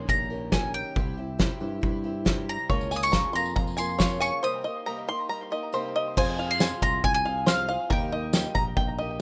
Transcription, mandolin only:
0.09 0.50 A#5 medium
0.52 0.74 G#5 medium
0.74 2.01 G5 medium
2.49 2.96 A#5 medium
2.96 3.03 D#6 medium
3.03 3.35 C#6 medium
3.35 3.78 A#5 medium
3.78 4.21 C6 medium
4.22 4.43 C#6 loud
4.44 5.70 D#6 medium
6.18 6.48 G#5 medium
6.51 6.82 C6 loud
6.83 7.04 A#5 medium
7.04 7.13 G#5 loud
7.14 7.48 G#5 medium
7.48 7.92 F5 medium
7.92 8.32 G5 medium

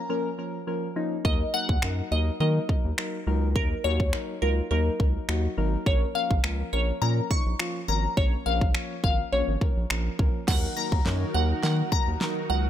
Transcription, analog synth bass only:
1.25 1.44 D#2 loud
1.69 1.78 D#2 medium
1.83 2.02 F#2 medium
2.11 2.30 D#2 medium
2.40 2.59 D#3 loud
2.85 2.93 D#2 medium
3.27 3.57 C#2 medium
3.56 3.75 D#2 loud
3.85 4.14 D#2 medium
4.42 4.61 C#2 medium
4.71 4.90 D#2 loud
5.00 5.19 C#2 medium
5.29 5.48 D#2 medium
5.58 5.77 G#1 medium
5.86 6.05 A#1 loud
6.31 6.40 A#1 loud
6.44 6.63 C#2 medium
6.73 6.92 A#1 medium
7.02 7.21 A#2 loud
7.46 7.55 A#1 medium
7.88 8.07 G#1 medium
8.17 8.36 A#1 loud
8.46 8.75 A#1 medium
9.04 9.23 G#1 medium
9.33 9.43 A#1 medium
9.48 9.57 G#1 medium
9.77 9.86 A#1 medium
9.90 10.09 A#1 medium
10.19 10.29 C#2 loud
10.48 10.67 D#2 loud
10.92 11.01 D#2 medium
11.06 11.25 F#2 medium
11.35 11.53 D#2 medium
11.63 11.82 D#3 loud
12.07 12.16 D#2 medium
12.50 12.70 C#2 medium

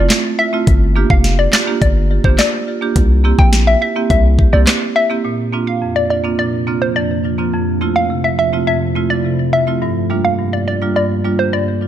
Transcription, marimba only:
0.38 0.44 E4 medium
0.38 0.45 F4 medium
0.53 0.64 A3 medium
0.53 0.64 C4 medium
0.53 0.65 E4 medium
0.53 0.65 F4 medium
0.96 1.07 A#3 medium
0.96 1.07 D4 medium
0.96 1.08 F4 medium
0.96 1.08 G4 medium
1.53 1.59 F4 medium
1.53 1.59 G4 medium
1.67 1.79 A#3 medium
1.67 1.79 D4 medium
1.67 1.79 F4 medium
1.67 1.79 G4 medium
2.10 2.16 F4 medium
2.10 2.16 G4 medium
2.24 2.36 A#3 medium
2.24 2.36 D4 medium
2.24 2.36 F4 medium
2.24 2.36 G4 medium
2.67 2.73 F4 medium
2.67 2.73 G4 medium
2.81 2.93 A#3 medium
2.81 2.93 D4 medium
2.81 2.93 F4 medium
2.81 2.93 G4 medium
3.24 3.36 A#3 medium
3.24 3.36 C4 medium
3.24 3.36 E4 medium
3.24 3.36 G4 medium
3.81 3.87 E4 medium
3.81 3.88 G4 medium
3.95 4.07 A#3 medium
3.95 4.07 C4 medium
3.95 4.07 E4 medium
3.95 4.08 G4 medium
4.38 4.44 E4 medium
4.38 4.45 G4 medium
4.53 4.64 A#3 medium
4.53 4.64 C4 medium
4.53 4.65 E4 medium
4.53 4.65 G4 medium
4.95 5.01 E4 medium
4.95 5.02 G4 medium
5.10 5.21 A#3 medium
5.10 5.22 C4 medium
5.10 5.22 E4 medium
5.10 5.22 G4 medium
5.25 5.67 A#2 medium
5.53 5.64 A#3 medium
5.53 5.64 C4 medium
5.53 5.65 D4 medium
5.53 5.65 F4 medium
5.82 6.24 F2 medium
6.10 6.16 D4 medium
6.10 6.16 F4 medium
6.24 6.36 A#3 medium
6.24 6.36 C4 medium
6.24 6.36 D4 medium
6.24 6.36 F4 medium
6.39 6.81 A#2 medium
6.67 6.79 A#3 medium
6.67 6.79 C4 medium
6.67 6.79 D4 medium
6.67 6.79 F4 medium
6.96 7.38 F2 medium
7.24 7.30 D4 medium
7.24 7.30 F4 medium
7.38 7.50 A#3 medium
7.38 7.50 C4 medium
7.38 7.50 D4 medium
7.38 7.50 F4 medium
7.53 7.95 F2 medium
7.81 7.93 A3 medium
7.81 7.93 C4 medium
7.81 7.93 E4 medium
7.81 7.93 F4 medium
8.10 8.53 C3 medium
8.38 8.44 E4 medium
8.38 8.45 F4 medium
8.53 8.64 A3 medium
8.53 8.64 C4 medium
8.53 8.65 E4 medium
8.53 8.65 F4 medium
8.67 9.10 F2 medium
8.95 9.07 A3 medium
8.95 9.07 C4 medium
8.95 9.07 E4 medium
8.95 9.08 F4 medium
9.24 9.67 C3 medium
9.52 9.58 E4 medium
9.52 9.59 F4 medium
9.67 9.79 A3 medium
9.67 9.79 C4 medium
9.67 9.79 E4 medium
9.67 9.79 F4 medium
9.82 10.24 G2 medium
10.10 10.21 G3 medium
10.10 10.22 A#3 medium
10.10 10.22 D4 medium
10.10 10.22 F4 medium
10.39 10.81 G2 medium
10.67 10.73 D4 medium
10.67 10.73 F4 medium
10.81 10.93 G3 medium
10.81 10.93 A#3 medium
10.81 10.93 D4 medium
10.81 10.93 F4 medium
10.96 11.39 G2 medium
11.24 11.36 G3 medium
11.24 11.36 A#3 medium
11.24 11.36 D4 medium
11.24 11.36 F4 medium
11.53 11.88 G2 medium
11.81 11.87 D4 medium
11.81 11.88 F4 medium

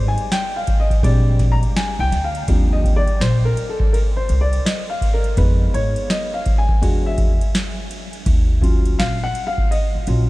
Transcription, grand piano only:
0.00 0.63 G3 medium
0.00 0.64 G#3 soft
0.00 0.64 D#4 medium
0.08 0.33 G#5 medium
0.32 0.56 G5 loud
0.56 0.81 F5 medium
0.80 1.05 D#5 medium
1.03 2.08 G3 medium
1.03 2.08 G#3 medium
1.03 2.08 C4 medium
1.03 2.09 D4 medium
1.03 1.53 D5 medium
1.52 1.57 A#5 medium
1.76 2.01 G#5 medium
2.00 2.25 G5 loud
2.24 2.69 F5 medium
2.48 5.33 F3 medium
2.48 5.33 G3 medium
2.48 5.34 C4 soft
2.48 5.34 D4 medium
2.73 2.95 D#5 medium
2.96 3.21 D5 medium
3.21 3.46 C5 medium
3.45 3.70 A#4 medium
3.69 3.94 A4 medium
3.93 3.98 A#4 medium
4.16 4.42 C5 medium
4.41 4.66 D5 medium
4.66 4.90 D#5 medium
4.90 5.14 F5 medium
5.14 5.36 A#4 medium
5.37 6.78 G#3 medium
5.37 6.78 B3 soft
5.37 6.78 D#4 medium
5.37 5.75 B4 medium
5.74 6.11 C#5 medium
6.10 6.32 D#5 medium
6.34 6.59 F5 medium
6.58 7.08 G#5 medium
6.81 7.34 G#3 medium
6.81 7.34 D4 soft
6.81 7.34 F#4 medium
7.06 8.11 E5 medium
8.61 9.14 F#3 medium
8.61 9.15 C#4 medium
8.61 9.15 F4 medium
8.99 9.24 F5 loud
9.23 9.48 F#5 loud
9.47 9.69 F5 loud
9.71 10.30 D#5 loud
10.07 10.30 F#3 soft
10.07 10.30 C#4 soft
10.07 10.30 F4 medium

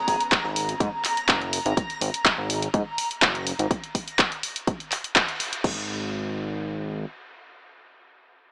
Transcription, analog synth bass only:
0.08 0.16 G#1 loud
0.45 0.74 G#1 medium
0.80 0.89 G#2 loud
1.29 1.59 F#1 medium
1.65 1.73 G#1 loud
2.01 2.10 G#1 loud
2.38 2.68 G#1 medium
2.74 2.82 G#2 loud
3.22 3.53 F#1 medium
3.59 3.67 G#1 loud
5.64 7.05 G#1 loud

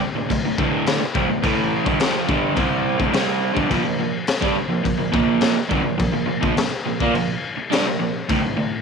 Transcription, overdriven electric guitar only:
0.01 muted overdriven electric guitar stroke medium
0.15 0.28 D2 medium
0.15 0.29 A2 medium
0.29 0.43 D2 medium
0.29 0.44 A2 medium
0.45 0.56 D2 medium
0.45 0.57 A2 medium
0.58 1.00 D2 medium
0.58 1.00 A2 medium
0.58 1.01 D3 loud
1.01 muted overdriven electric guitar stroke medium
1.14 1.28 C3 medium
1.14 1.29 G3 loud
1.29 1.42 D2 medium
1.29 1.41 A2 medium
1.42 1.85 A2 loud
1.42 1.85 E3 loud
1.42 1.85 A3 loud
1.86 1.99 G2 medium
1.86 2.00 D3 loud
2.00 2.28 F2 medium
2.00 2.28 C3 medium
2.00 2.29 F3 medium
2.28 2.55 G2 loud
2.28 2.56 D3 loud
2.28 2.55 G3 loud
2.55 2.98 C3 medium
2.55 2.99 G3 loud
2.55 2.99 C4 loud
2.98 3.13 D2 medium
2.98 3.13 A2 medium
3.13 3.54 C3 medium
3.13 3.55 G3 medium
3.13 3.56 C4 loud
3.54 3.69 G2 medium
3.54 3.69 D3 loud
3.70 3.82 A#2 medium
3.70 3.84 F3 loud
3.84 3.97 A#2 medium
3.84 3.98 F3 medium
3.99 4.22 A#2 medium
3.99 4.23 F3 medium
4.41 4.55 G3 medium
4.41 4.55 D4 loud
4.55 muted overdriven electric guitar stroke medium
4.69 4.82 A#2 medium
4.69 4.83 F3 medium
4.84 4.97 A#2 medium
4.84 4.97 F3 medium
4.98 5.11 A#2 medium
4.98 5.11 F3 medium
5.12 5.54 A#2 loud
5.12 5.55 F3 loud
5.12 5.56 A#3 loud
5.55 muted overdriven electric guitar stroke medium
5.69 5.83 G2 medium
5.69 5.84 D3 loud
5.84 5.97 A#2 medium
5.84 5.97 F3 medium
5.98 6.11 A#2 medium
5.98 6.12 F3 medium
6.12 6.25 A#2 medium
6.12 6.25 F3 medium
6.26 6.40 A#2 medium
6.26 6.41 F3 medium
6.41 6.55 A#2 medium
6.41 6.55 F3 loud
6.56 6.70 A#2 medium
6.56 6.71 F3 medium
6.71 muted overdriven electric guitar stroke medium
6.85 7.00 A#2 medium
6.85 7.00 F3 medium
7.01 7.14 A#3 medium
7.01 7.15 F4 loud
7.14 7.37 A#2 medium
7.14 7.37 F3 medium
7.57 muted overdriven electric guitar stroke medium
7.71 7.85 G3 medium
7.71 7.85 D4 loud
7.85 7.98 A#2 medium
7.85 7.99 F3 medium
7.99 8.23 A#2 medium
7.99 8.23 F3 medium
8.29 8.41 D2 medium
8.29 8.41 A2 loud
8.42 8.55 D2 medium
8.42 8.56 A2 medium
8.57 8.80 D2 medium
8.57 8.80 A2 medium

